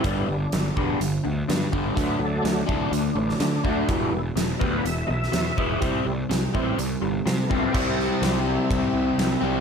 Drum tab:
CC |----------------|----------------|----------------|----------------|
RD |----------------|----------------|----------------|----------------|
HH |x---x---x---x---|x---x---x---x---|x---x---x---x---|x---x---x---x---|
SD |----o-------o---|----o------oo---|----o------oo---|----o-------o---|
BD |o-----o-------o-|o-----o-------o-|o-----o-------o-|o-----o-------o-|

CC |x---------------|
RD |----b---b---b---|
HH |----------------|
SD |--o-o-------o---|
BD |o-------o-------|